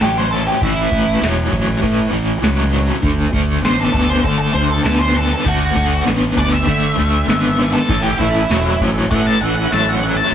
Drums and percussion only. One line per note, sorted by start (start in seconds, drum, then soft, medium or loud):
0.00 snare loud
0.00 open hi-hat medium
0.61 kick loud
0.61 open hi-hat medium
0.92 kick medium
1.22 snare loud
1.22 open hi-hat medium
1.52 kick medium
1.82 kick medium
1.82 open hi-hat medium
2.43 snare loud
2.43 open hi-hat medium
3.03 kick loud
3.03 open hi-hat medium
3.33 kick medium
3.64 snare loud
3.64 open hi-hat medium
3.94 kick medium
4.24 kick medium
4.24 open hi-hat medium
4.84 snare loud
4.84 open hi-hat medium
5.45 kick loud
5.45 open hi-hat medium
5.62 snare soft
5.76 kick medium
6.06 snare loud
6.06 open hi-hat medium
6.37 kick medium
6.67 kick medium
6.67 open hi-hat medium
7.29 snare loud
7.29 open hi-hat medium
7.89 kick loud
7.89 open hi-hat medium
8.19 kick medium
8.50 snare loud
8.50 open hi-hat medium
8.80 kick medium
9.10 kick medium
9.10 open hi-hat medium
9.71 snare loud
9.71 open hi-hat medium